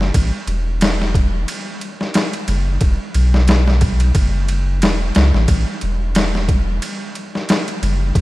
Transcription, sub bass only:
Already playing: F#1
0.15 A1
0.47 E1
2.48 F#1
2.81 E1
3.15 B1
4.15 F#1
4.82 E1
5.16 C#2
5.34 A1
5.49 A1
5.83 E1
7.82 F#1
8.15 E1

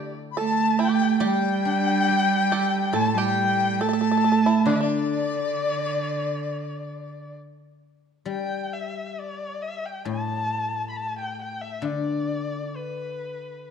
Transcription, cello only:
Already playing: D3
0.36 A3
1.24 G3
2.93 A3
3.13 G3
3.80 A3
4.65 D3
4.81 D3

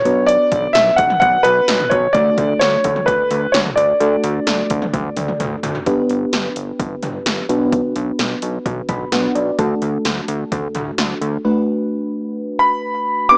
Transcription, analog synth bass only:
0.05 B1
0.52 B1
0.75 B1
0.99 B1
1.22 B1
1.45 B1
1.68 B1
1.91 B1
2.15 D2
2.38 D2
2.61 D2
2.85 D2
3.08 D2
3.31 D2
3.54 D2
3.77 D2
4.00 D2
4.24 D2
4.47 D2
4.71 D2
4.94 D2
5.17 D2
5.40 D2
5.63 D2
5.86 G1
6.10 G1
6.33 G1
6.56 G1
6.79 G1
7.03 G1
7.26 G1
7.49 B1
7.96 B1
8.19 B1
8.42 B1
8.66 B1
8.89 B1
9.12 B1
9.35 B1
9.59 D2
9.82 D2
10.05 D2
10.28 D2
10.52 D2
10.75 D2
10.98 D2
11.21 D2

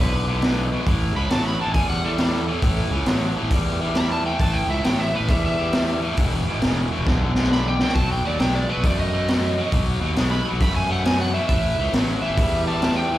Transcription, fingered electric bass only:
0.00 B1
0.86 A1
1.15 C#2
1.31 A1
1.67 A1
1.74 E2
2.62 A1
2.90 C#2
3.06 A1
3.43 A1
3.50 E2
4.39 A1
4.67 C#2
4.85 A1
5.20 A1
5.29 E2
6.17 E1
6.45 G#1
6.63 E1
6.99 E1
7.07 B1
7.95 B1
8.23 D#2
8.40 B1
8.77 B1
8.84 F#2
9.72 B1
10.01 D#2
10.16 B1
10.52 B1
10.61 F#2
11.49 A1
11.79 C#2
11.93 A1
12.30 A1
12.37 E2

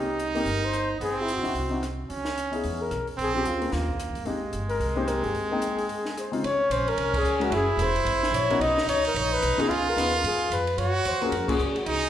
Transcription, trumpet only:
Already playing: D#4
1.01 C4
2.09 C#4
3.18 C4
3.73 A#3
4.26 G#3
6.44 C#4
7.51 E4
8.61 D#4
9.69 F4
10.78 F#4
11.85 D#4

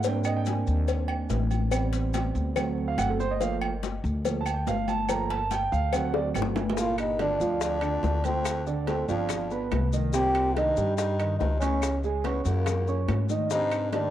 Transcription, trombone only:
6.79 F4
7.00 D#4
7.21 D4
7.63 D4
8.25 C4
8.87 C4
9.08 D4
10.14 G4
10.56 D#4
10.98 D#4
11.39 D#4
11.60 C#4
12.24 B3
12.46 A#3
13.51 D#4
13.92 D4

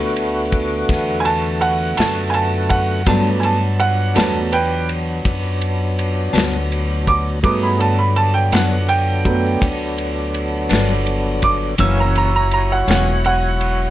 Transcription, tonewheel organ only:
Already playing: D3 A3 B3 F#4
3.08 F#3 B3 D4
7.45 F#3 B3 D#4 G#4
7.78 D3 F#3 B3 D4
11.79 F#3 E4 F#4 C#5

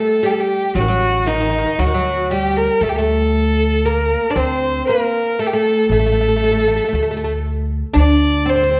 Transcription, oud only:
Already playing: A3
0.23 G3
0.75 F#3
0.81 D#3
0.88 F#3
1.26 D#3
1.34 D#3
1.40 D#3
1.50 D#3
1.58 D#3
1.66 D#3
1.79 F#3
1.86 D#3
1.94 F#3
2.31 G3
2.83 A3
2.99 A3
3.86 A#3
4.30 D4
4.36 C4
4.89 A#3
5.39 A3
5.53 A3
5.92 A3
5.99 A3
6.06 A3
6.12 A3
6.21 A3
6.28 A3
6.36 A3
6.43 A3
6.51 A3
6.59 A3
6.68 A3
6.76 A3
6.84 A3
6.88 A3
6.95 A3
7.02 A3
7.11 A3
7.17 A3
7.24 A3
7.94 D4
8.46 C4
8.55 C4
8.63 C4
8.71 C4

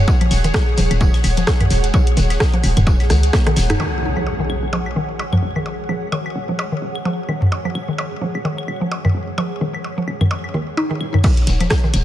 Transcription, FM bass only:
0.31 D#1
0.78 D#1
0.91 D#1
1.24 D#1
1.71 D#1
2.17 D#1
2.64 D#1
2.77 D#1
3.10 C#2
3.57 D#1
4.03 D#1
4.50 D#1
4.63 D#1
4.96 D#1
5.43 D#1
5.89 D#1
6.36 D#1
6.49 D#1
6.82 D#1
7.29 D#1
7.75 D#1
8.22 D#1
8.35 D#1
8.68 D#1
9.15 D#1
9.61 D#1
10.08 D#1
10.21 D#1
10.54 D#2
11.01 D#1
11.47 D#1
11.94 D#1

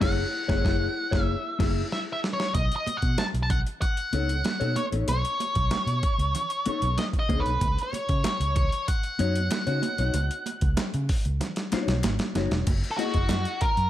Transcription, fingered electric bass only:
0.02 F#1
0.49 F#1
0.65 F#1
1.12 F#1
1.60 F#1
2.55 B1
2.87 muted fingered electric bass stroke
3.03 B2
3.19 muted fingered electric bass stroke
3.34 B1
4.13 C#2
4.61 B2
4.92 A1
5.08 B1
5.56 B1
5.87 B2
6.19 C#2
6.67 muted fingered electric bass stroke
6.82 B1
7.29 C#2
7.46 B1
7.61 C#2
7.93 muted fingered electric bass stroke
8.09 C#3
8.25 muted fingered electric bass stroke
8.40 C#2
9.20 F#2
9.67 C#3
9.99 B1
10.14 C#2
10.62 C#2
10.94 C#3
11.26 C#2
11.73 muted fingered electric bass stroke
11.88 B1
12.04 G#1
12.35 F#1
12.51 E1
12.67 F#1
13.15 F#1
13.30 F#2
13.61 muted fingered electric bass stroke
13.77 F#2

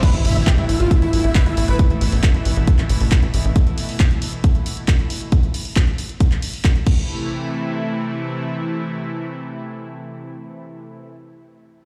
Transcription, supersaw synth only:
0.03 B4
0.14 E4
0.25 E4
0.36 E4
0.46 G4
0.58 E4
0.69 E4
0.80 F4
0.91 E4
1.02 E4
1.13 E4
1.24 E4
1.35 B4
1.46 E4
1.57 E4
1.68 B4

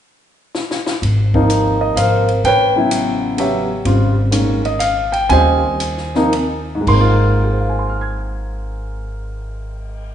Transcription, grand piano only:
1.34 C3 F3 A#3 D#4
1.81 D#5
1.95 C3 F3 A#3 C4 A#4 C5 F5
2.45 B4 C#5 G5
2.76 C#3 F#3 B3 E4
3.37 C#3 F#3 B3 C#4 G4 C#5 E5
3.85 C#3 G3 C4 F4
4.31 A#2 D#3 G#3 C#4
4.66 D#5
4.79 F5
5.12 G5
5.29 C#3 G3 C4 F4 C5 D#5 G#5
6.15 C3 F3 A#3 D#4
6.75 G#2
6.81 G#3
6.88 A#3 C6
6.94 C4
7.01 F4
7.44 G#4
7.52 C5
7.60 F5
7.69 G#5
7.79 C6
7.89 F6
8.01 G#6

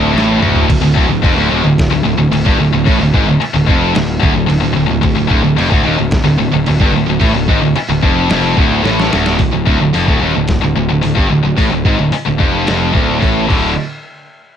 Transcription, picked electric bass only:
Already playing: D1
0.14 A1
0.41 D1
0.70 D1
0.82 D1
0.97 D1
1.09 D1
1.24 F1
1.38 D1
1.52 D#1
1.65 D1
1.91 D1
2.03 D1
2.16 D1
2.29 D1
2.46 G1
2.57 D1
2.72 D1
2.87 A1
2.98 D1
3.14 G#1
3.26 D1
3.39 muted picked electric bass stroke
3.54 D1
3.69 F1
3.95 D1
4.23 D1
4.36 D1
4.49 D1
4.63 D1
4.76 D1
4.88 D1
5.03 D1
5.19 D1
5.30 D1
5.45 D1
5.59 F1
5.72 D1
5.86 D#1
6.00 D1
6.25 D1
6.40 D1
6.53 D1
6.68 D1
6.80 G1
6.95 D1
7.09 D1
7.22 A1
7.35 D1
7.48 G#1
7.63 D1
7.77 muted picked electric bass stroke
7.89 D1
8.03 F1
8.30 F1
8.58 D1
8.84 A1
9.14 D1
9.39 D1
9.53 D1
9.67 D1
9.80 D1
9.95 F1
10.08 D1
10.21 D#1
10.35 D1
10.63 D1
10.76 D1
10.90 D1
11.05 D1
11.17 G1
11.30 D1
11.44 D1
11.58 A1
11.71 D1
11.85 G#1
12.00 D1
12.14 muted picked electric bass stroke
12.27 D1
12.40 F1
12.68 F1
12.94 D1
13.23 A1
13.50 D1

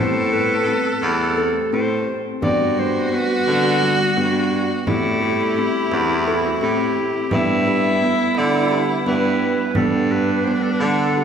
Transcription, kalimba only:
0.00 C4
0.33 A4
0.68 C4
1.38 A4
1.73 C4
2.42 B3
2.78 G3
3.13 B3
3.82 G3
4.17 B3
4.87 C4
5.22 A4
5.58 C4
6.28 A4
6.63 C4
7.33 B3
7.67 G4
8.02 B3
8.71 G4
9.07 B3
9.77 B3
10.12 G4
10.47 B3
11.17 G4

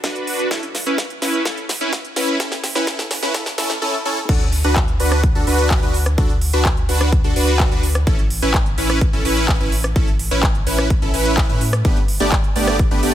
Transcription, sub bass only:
0.04 D2
0.51 A1
0.86 A1
1.22 A1
1.45 A1
1.81 A1
2.16 A1
2.40 A1
2.75 A1
2.87 A1
3.22 A1
3.58 A1
4.29 D2
4.64 D2
5.00 D2
5.35 D2
5.47 D2
5.82 D2
6.18 D2
6.53 D2
6.89 D2
7.24 D2
7.36 D2
7.71 D2
8.07 A1
8.42 A1
8.78 A1
9.13 A1
9.25 A1
9.60 A1
9.96 A1
10.31 A1
10.67 A1
11.02 A1
11.14 A1
11.49 A2
11.85 G1
12.20 G1
12.56 G1
12.91 G1
13.03 G1

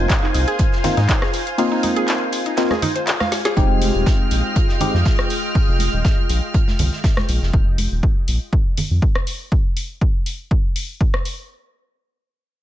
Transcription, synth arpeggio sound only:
0.23 D#4
0.34 D#4
0.48 G#4
0.97 D#4
1.09 D#4
1.22 G#4
1.72 D#4
1.83 D#4
1.96 G#4
2.46 D#4
2.58 D#4
2.71 G#4
2.82 D#4
2.96 C5
3.20 F5
3.45 G#4

